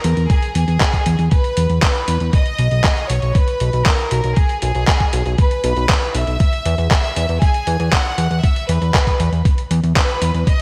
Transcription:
0.00 0.30 A#4 medium
0.00 0.30 A#5 medium
0.04 0.14 E2 loud
0.04 closed hi-hat loud
0.17 0.27 E2 medium
0.17 closed hi-hat soft
0.30 0.54 G#4 loud
0.30 0.54 G#5 medium
0.30 kick loud
0.30 closed hi-hat medium
0.43 closed hi-hat soft
0.55 0.65 E2 loud
0.55 1.28 G#4 loud
0.55 1.28 G#5 medium
0.55 closed hi-hat medium
0.68 0.78 E2 medium
0.68 closed hi-hat soft
0.81 kick loud
0.81 clap loud
0.81 closed hi-hat medium
0.93 kick medium
0.93 closed hi-hat soft
1.06 1.16 E2 medium
1.06 closed hi-hat loud
1.19 1.29 E2 medium
1.19 closed hi-hat soft
1.31 1.79 B4 loud
1.31 1.79 B5 medium
1.31 kick loud
1.31 closed hi-hat medium
1.44 closed hi-hat soft
1.57 1.67 E2 loud
1.57 closed hi-hat loud
1.70 1.79 E2 medium
1.70 closed hi-hat soft
1.82 2.30 B4 loud
1.82 2.30 B5 medium
1.82 kick loud
1.82 clap loud
1.82 closed hi-hat medium
1.95 closed hi-hat soft
2.08 2.18 E2 medium
2.08 closed hi-hat loud
2.20 2.30 E2 medium
2.20 closed hi-hat soft
2.33 3.10 D#5 loud
2.33 3.10 D#6 medium
2.33 kick loud
2.33 closed hi-hat medium
2.46 closed hi-hat soft
2.58 2.68 B1 medium
2.58 closed hi-hat medium
2.71 2.81 B1 medium
2.71 closed hi-hat soft
2.84 kick loud
2.84 clap loud
2.84 closed hi-hat medium
2.97 closed hi-hat soft
3.10 3.19 B1 medium
3.10 3.35 C#5 loud
3.10 3.36 C#6 medium
3.10 closed hi-hat loud
3.22 3.32 B1 medium
3.22 closed hi-hat soft
3.35 3.86 B4 loud
3.35 3.86 B5 medium
3.35 kick loud
3.35 closed hi-hat medium
3.48 closed hi-hat soft
3.60 3.70 B1 loud
3.60 closed hi-hat medium
3.73 3.83 B1 medium
3.73 closed hi-hat soft
3.86 4.37 A#4 loud
3.86 4.37 A#5 medium
3.86 kick loud
3.86 clap loud
3.86 closed hi-hat medium
3.98 closed hi-hat soft
4.11 4.21 B1 loud
4.11 closed hi-hat loud
4.24 4.34 B1 medium
4.24 closed hi-hat soft
4.36 4.62 G#4 loud
4.36 4.62 G#5 medium
4.36 kick loud
4.36 closed hi-hat medium
4.49 closed hi-hat soft
4.62 4.72 B1 medium
4.62 5.35 G#4 loud
4.62 5.35 G#5 medium
4.62 closed hi-hat medium
4.75 4.85 B1 medium
4.75 closed hi-hat soft
4.88 kick loud
4.88 clap loud
4.88 closed hi-hat medium
5.00 kick medium
5.00 closed hi-hat soft
5.13 5.23 B1 medium
5.13 closed hi-hat loud
5.26 5.36 B1 medium
5.26 closed hi-hat soft
5.38 6.15 B4 loud
5.38 6.15 B5 medium
5.38 kick loud
5.38 closed hi-hat medium
5.51 closed hi-hat soft
5.64 5.74 B1 loud
5.64 closed hi-hat medium
5.77 5.86 B1 medium
5.77 closed hi-hat soft
5.89 kick loud
5.89 clap loud
5.89 closed hi-hat medium
6.02 closed hi-hat soft
6.15 6.24 B1 medium
6.15 6.90 E5 loud
6.15 6.91 E6 medium
6.15 closed hi-hat medium
6.27 6.37 B1 medium
6.27 closed hi-hat soft
6.40 kick loud
6.40 closed hi-hat medium
6.53 closed hi-hat soft
6.65 6.75 E2 loud
6.65 closed hi-hat medium
6.78 6.88 E2 medium
6.78 closed hi-hat soft
6.91 7.38 E5 loud
6.91 7.39 E6 loud
6.91 kick loud
6.91 clap loud
6.91 closed hi-hat medium
7.04 closed hi-hat soft
7.16 7.26 E2 medium
7.16 closed hi-hat medium
7.29 7.39 E2 medium
7.29 closed hi-hat soft
7.42 7.93 G#4 loud
7.42 7.93 G#5 loud
7.42 kick loud
7.42 closed hi-hat medium
7.54 closed hi-hat soft
7.67 7.77 E2 medium
7.67 closed hi-hat loud
7.80 7.90 E2 medium
7.80 closed hi-hat soft
7.93 8.44 F#5 loud
7.93 8.44 F#6 loud
7.93 kick loud
7.93 clap loud
7.93 closed hi-hat medium
8.05 closed hi-hat soft
8.18 8.28 E2 loud
8.18 closed hi-hat medium
8.31 8.40 E2 medium
8.31 closed hi-hat soft
8.43 8.69 E5 loud
8.43 8.69 E6 medium
8.43 kick loud
8.43 closed hi-hat medium
8.56 closed hi-hat soft
8.69 8.79 E2 loud
8.69 9.67 B4 loud
8.69 9.67 B5 medium
8.69 closed hi-hat loud
8.82 8.91 E2 medium
8.82 closed hi-hat soft
8.94 kick loud
8.94 clap loud
8.94 closed hi-hat medium
9.07 kick medium
9.07 closed hi-hat soft
9.20 9.30 E2 loud
9.20 closed hi-hat loud
9.33 9.42 E2 medium
9.33 closed hi-hat soft
9.45 kick loud
9.45 closed hi-hat medium
9.58 closed hi-hat soft
9.71 9.80 E2 loud
9.71 closed hi-hat loud
9.83 9.93 E2 medium
9.83 closed hi-hat soft
9.96 10.43 B4 loud
9.96 10.44 B5 medium
9.96 kick loud
9.96 clap loud
9.96 closed hi-hat medium
10.09 closed hi-hat soft
10.22 10.31 E2 medium
10.22 closed hi-hat loud
10.34 10.44 E2 medium
10.34 closed hi-hat soft
10.47 10.62 D#5 loud
10.47 10.62 D#6 loud
10.47 kick loud
10.47 closed hi-hat medium

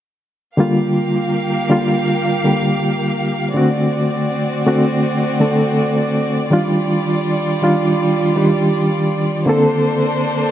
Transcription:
0.57 1.65 D3 medium
0.57 1.66 G3 medium
0.57 3.51 A#3 medium
0.57 1.66 A#3 medium
0.57 1.67 F4 medium
0.57 3.51 G4 medium
0.57 3.51 F5 medium
1.70 2.40 D3 medium
1.70 2.40 G3 medium
1.70 2.41 A#3 medium
1.70 2.41 F4 medium
2.44 2.58 D3 medium
2.44 2.58 G3 medium
2.44 2.59 A#3 medium
2.44 2.59 G4 medium
3.54 4.62 D3 medium
3.54 4.62 A3 medium
3.54 6.48 C4 medium
3.54 4.63 C4 medium
3.54 6.48 F#4 medium
3.54 4.63 F#4 medium
3.54 9.44 D5 medium
4.66 5.36 D3 medium
4.66 5.36 A3 medium
4.66 5.37 C4 medium
4.66 5.37 F#4 medium
5.40 5.54 D3 medium
5.40 5.54 A3 medium
5.40 5.55 C4 medium
5.40 5.55 A4 medium
6.50 7.58 D#3 medium
6.50 7.58 G3 medium
6.50 9.44 G3 medium
6.50 7.59 D4 medium
6.50 9.44 F4 medium
6.50 7.59 F4 medium
7.62 8.32 D#3 medium
7.62 8.33 G3 medium
7.62 8.33 D4 medium
7.62 8.33 F4 medium
8.36 8.50 D#3 medium
8.36 8.50 G3 medium
8.36 8.51 D4 medium
8.36 8.51 G4 medium
9.46 10.51 D3 medium
9.46 10.51 A#3 medium
9.46 10.51 C4 medium
9.46 10.51 D4 medium
9.46 10.51 A4 medium
9.46 10.51 C5 medium

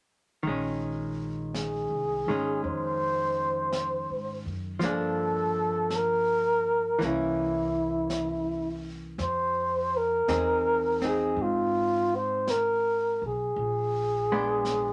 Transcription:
0.43 1.86 A#1 medium
0.43 2.27 D#3 soft
0.43 brush sweep soft
0.47 2.28 G#3 soft
0.47 2.30 C#4 soft
1.54 2.60 G#4 medium
1.54 brush sweep soft
1.54 snare soft
1.54 hi-hat pedal soft
1.90 2.24 C2 medium
2.26 2.60 G#1 medium
2.26 4.79 D#3 soft
2.26 4.82 G#3 soft
2.31 4.84 C#4 soft
2.63 4.05 F2 medium
2.63 4.44 C5 medium
2.63 brush sweep soft
3.72 brush sweep soft
3.72 snare soft
3.72 hi-hat pedal medium
4.10 4.43 G#2 medium
4.45 4.79 F#2 medium
4.79 6.96 G2 medium
4.79 6.98 F3 soft
4.79 7.00 A#3 soft
4.79 brush sweep soft
4.79 snare soft
4.84 7.01 D4 medium
4.84 5.97 A4 medium
5.90 brush sweep soft
5.90 snare soft
5.90 hi-hat pedal soft
5.96 7.07 A#4 medium
6.99 9.15 C2 medium
6.99 9.18 E3 soft
6.99 9.19 A#3 soft
6.99 brush sweep soft
6.99 snare soft
7.04 9.20 C#4 soft
7.04 8.87 E4 medium
8.10 brush sweep soft
8.10 snare soft
8.10 hi-hat pedal soft
9.18 10.23 F2 medium
9.18 9.99 C5 medium
9.18 brush sweep soft
9.18 snare soft
9.97 11.04 A#4 medium
10.28 11.33 E2 medium
10.28 11.01 C4 soft
10.28 11.03 D#4 soft
10.28 11.04 G#4 soft
10.28 brush sweep soft
10.28 snare soft
10.28 hi-hat pedal soft
11.01 13.55 C4 soft
11.01 13.56 D#4 soft
11.01 13.57 G#4 soft
11.01 snare soft
11.08 11.44 G#4 medium
11.36 13.17 G#2 medium
11.36 brush sweep soft
11.42 12.17 F4 medium
12.16 12.52 C5 medium
12.47 13.23 A#4 medium
12.47 brush sweep soft
12.47 snare soft
12.47 hi-hat pedal medium
13.22 13.53 B1 medium
13.26 14.93 G#4 medium
13.56 14.93 A#1 medium
13.56 brush sweep soft
14.32 14.93 G#3 soft
14.32 14.93 B3 soft
14.32 14.93 D4 soft
14.65 brush sweep soft
14.65 snare soft
14.65 hi-hat pedal soft

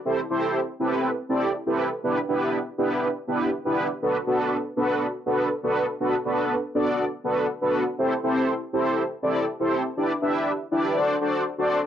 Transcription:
0.05 0.20 C4 medium
0.05 0.20 E4 medium
0.05 0.20 G4 medium
0.05 0.20 A4 medium
0.05 0.21 C5 loud
0.30 0.60 C4 medium
0.30 0.60 E4 medium
0.30 0.60 G4 medium
0.30 0.60 A4 medium
0.30 0.60 C5 loud
0.80 1.10 C4 medium
0.80 1.10 E4 medium
0.80 1.10 G4 medium
0.80 1.10 A4 medium
0.80 1.10 B4 loud
1.29 1.52 C4 medium
1.29 1.52 E4 medium
1.29 1.52 G4 medium
1.29 1.52 A4 medium
1.29 1.52 D5 medium
1.66 1.89 C4 medium
1.66 1.89 E4 medium
1.66 1.89 G4 medium
1.66 1.89 A4 medium
1.66 1.89 B4 loud
2.03 2.19 B3 medium
2.03 2.19 D4 medium
2.03 2.19 E4 medium
2.03 2.19 G4 medium
2.03 2.19 B4 loud
2.28 2.58 B3 medium
2.28 2.59 D4 medium
2.28 2.59 E4 medium
2.28 2.59 G4 medium
2.28 2.59 B4 loud
2.78 3.08 B3 medium
2.78 3.08 D4 medium
2.78 3.08 E4 medium
2.78 3.08 G4 medium
2.78 3.08 B4 loud
3.28 3.50 B3 medium
3.28 3.50 D4 medium
3.28 3.50 E4 medium
3.28 3.50 G4 medium
3.28 3.50 B4 loud
3.65 3.87 B3 medium
3.65 3.87 D4 medium
3.65 3.87 E4 medium
3.65 3.88 G4 medium
3.65 3.88 B4 loud
4.02 4.17 B3 medium
4.02 4.17 D4 medium
4.02 4.17 F#4 medium
4.02 4.17 A4 medium
4.02 4.17 B4 medium
4.27 4.57 B3 medium
4.27 4.57 D4 medium
4.27 4.57 F#4 medium
4.27 4.57 A4 medium
4.27 4.57 B4 loud
4.76 5.06 B3 medium
4.76 5.06 D4 medium
4.76 5.06 F#4 medium
4.76 5.07 A4 medium
4.76 5.07 B4 loud
5.26 5.48 B3 medium
5.26 5.48 D4 medium
5.26 5.49 F#4 medium
5.26 5.49 A4 medium
5.26 5.49 B4 loud
5.63 5.86 B3 medium
5.63 5.86 D4 medium
5.63 5.86 F#4 medium
5.63 5.86 A4 medium
5.63 5.86 B4 loud
6.00 6.15 B3 medium
6.00 6.15 D4 medium
6.00 6.15 F#4 medium
6.00 6.15 A4 medium
6.00 6.16 B4 loud
6.25 6.55 B3 medium
6.25 6.55 D4 medium
6.25 6.55 F#4 medium
6.25 6.55 A4 medium
6.25 6.55 B4 loud
6.75 7.05 B3 medium
6.75 7.05 D4 medium
6.75 7.05 F#4 medium
6.75 7.05 A4 medium
6.75 7.05 D5 loud
7.24 7.47 B3 medium
7.24 7.47 D4 medium
7.24 7.47 F#4 medium
7.24 7.47 A4 medium
7.24 7.47 B4 loud
7.61 7.84 B3 loud
7.61 7.84 D4 medium
7.61 7.84 F#4 medium
7.61 7.84 A4 medium
7.61 7.84 B4 loud
7.98 8.14 C4 medium
7.98 8.14 E4 medium
7.98 8.14 G4 medium
7.98 8.14 A4 medium
7.98 8.14 C5 loud
8.23 8.53 C4 loud
8.23 8.53 E4 medium
8.23 8.54 G4 medium
8.23 8.54 A4 medium
8.23 8.54 C5 loud
8.73 9.03 C4 loud
8.73 9.03 E4 medium
8.73 9.03 G4 medium
8.73 9.03 A4 medium
8.73 9.03 C5 loud
9.22 9.45 C4 medium
9.22 9.45 E4 medium
9.22 9.45 G4 medium
9.22 9.45 A4 medium
9.22 9.45 D5 loud
9.60 9.82 C4 medium
9.60 9.82 E4 medium
9.60 9.82 G4 medium
9.60 9.82 A4 medium
9.60 9.83 C5 loud
9.97 10.12 D4 medium
9.97 10.12 E4 medium
9.97 10.12 G4 medium
9.97 10.12 B4 medium
9.97 10.12 D5 medium
10.22 10.52 D4 medium
10.22 10.52 E4 medium
10.22 10.52 G4 medium
10.22 10.52 B4 medium
10.22 10.52 E5 loud
10.71 10.95 D4 medium
10.71 10.96 E4 medium
10.71 10.96 G4 medium
10.71 10.96 B4 medium
10.71 10.96 D5 loud
10.96 11.16 D4 loud
10.96 11.16 F#4 medium
10.96 11.16 A4 medium
10.96 11.16 C5 medium
10.96 11.16 D5 loud
11.21 11.43 D4 medium
11.21 11.43 F#4 medium
11.21 11.44 A4 medium
11.21 11.44 C5 medium
11.21 11.44 D5 loud
11.58 11.81 D4 medium
11.58 11.81 F#4 medium
11.58 11.81 A4 medium
11.58 11.81 C5 medium
11.58 11.81 D5 loud

